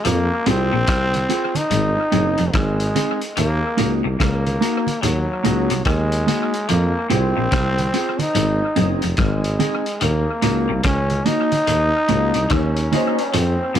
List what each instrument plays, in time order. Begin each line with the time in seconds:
0.05 tuba F2, clean electric guitar F3, trombone A#3, closed hi-hat, low conga
0.46 tuba C2, clean electric guitar C3 C4 F4 G#4, trombone C4, closed hi-hat, low conga
0.72 tuba A#1, clean electric guitar A#2
0.87 tuba C2, clean electric guitar C3, kick, cross-stick, closed hi-hat
1.14 closed hi-hat, high conga
1.29 clean electric guitar C4 F4 G#4, closed hi-hat
1.55 trombone D#4, closed hi-hat, high conga
1.70 tuba G#1, clean electric guitar G#2, closed hi-hat, low conga
1.96 muted clean electric guitar stroke
2.12 tuba F#1, clean electric guitar F#2 C4 D#4 G#4, closed hi-hat, low conga
2.38 tuba F1, clean electric guitar F2, closed hi-hat
2.54 tuba G#1, clean electric guitar G#2, trombone G#3, kick, cross-stick, closed hi-hat
2.80 closed hi-hat
2.95 clean electric guitar C4 D#4 G#4, closed hi-hat, high conga
3.21 closed hi-hat
3.37 tuba D#2, clean electric guitar D#3, trombone A#3, closed hi-hat, low conga
3.77 tuba C#2, clean electric guitar C#3 A#3 D#4 F#4, closed hi-hat, low conga
4.04 tuba C2, clean electric guitar C3
4.19 tuba C#2, clean electric guitar C#3, trombone A#3, kick, cross-stick, closed hi-hat
4.47 closed hi-hat, high conga
4.61 clean electric guitar A#3 D#4 F#4, closed hi-hat
4.87 closed hi-hat, high conga
5.03 tuba D#2, clean electric guitar D#3, trombone F#3, closed hi-hat, low conga
5.44 tuba C#2, clean electric guitar C#3 A#3 D#4 F#4, closed hi-hat, low conga
5.70 tuba C2, clean electric guitar C3, closed hi-hat
5.85 tuba D#2, clean electric guitar D#3, trombone G#3, kick, cross-stick, closed hi-hat
6.12 closed hi-hat
6.27 clean electric guitar A#3 D#4 F#4, closed hi-hat, high conga
6.54 closed hi-hat
6.69 tuba F2, clean electric guitar F3, trombone A#3, closed hi-hat, low conga
7.10 tuba C2, clean electric guitar C3 C4 F4 G#4, trombone C4, closed hi-hat, low conga
7.37 tuba A#1, clean electric guitar A#2
7.52 tuba C2, clean electric guitar C3, kick, cross-stick, closed hi-hat
7.78 closed hi-hat, high conga
7.94 clean electric guitar C4 F4 G#4, closed hi-hat
8.19 trombone D#4, closed hi-hat, high conga
8.35 tuba G#1, clean electric guitar G#2, closed hi-hat, low conga
8.62 muted clean electric guitar stroke
8.76 tuba F#1, clean electric guitar F#2 C4 D#4 G#4, closed hi-hat, low conga
9.02 tuba F1, clean electric guitar F2, closed hi-hat
9.17 tuba G#1, clean electric guitar G#2, trombone G#3, kick, cross-stick, closed hi-hat
9.44 closed hi-hat
9.59 clean electric guitar C4 D#4 G#4, closed hi-hat, high conga
9.86 closed hi-hat
10.01 tuba D#2, clean electric guitar D#3, trombone A#3, closed hi-hat, low conga
10.42 tuba C#2, clean electric guitar C#3 A#3 D#4 F#4, closed hi-hat, low conga
10.69 tuba C2, clean electric guitar C3
10.84 tuba C#2, clean electric guitar C#3, trombone C#4, kick, cross-stick, closed hi-hat
11.10 closed hi-hat, high conga
11.25 clean electric guitar A#3 D#4 F#4, trombone D#4, closed hi-hat, high conga
11.52 closed hi-hat, high conga
11.67 tuba D#2, clean electric guitar D#3, closed hi-hat, low conga
12.09 tuba C#2, clean electric guitar C#3 A#3 D#4 F#4, trombone section F#3 A#3 D#4, closed hi-hat, low conga
12.34 tuba C2, clean electric guitar C3, closed hi-hat
12.50 tuba D#2, clean electric guitar D#3, trombone C#4, kick, cross-stick, closed hi-hat, high conga
12.77 closed hi-hat
12.92 trombone section G#3 D#4 C5, clean electric guitar A#3 D#4 F#4, closed hi-hat, high conga
13.19 closed hi-hat
13.34 tuba F2, clean electric guitar F3, trombone C4, closed hi-hat, low conga
13.74 tuba C2, clean electric guitar C3 C4 F4, closed hi-hat, low conga